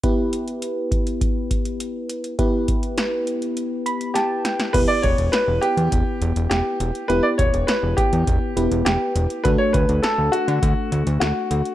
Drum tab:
CC |----------------|----------------|x---------------|----------------|
HH |x-xxx-xxx-xxx-xx|x-xxx-xxx-xxx-xx|x-xxx-xxx-xxx-xx|x-xxx-xxx-xxx-xx|
SD |----------------|----o-------o-oo|----o-------o---|----o-------o---|
BD |o-----o-o-o-----|o-o-------------|o-o-----o-------|--o---o-o-------|

CC |----------------|
HH |x-xxx-xxx-xxx-xx|
SD |----o-------o---|
BD |o-o-----o-------|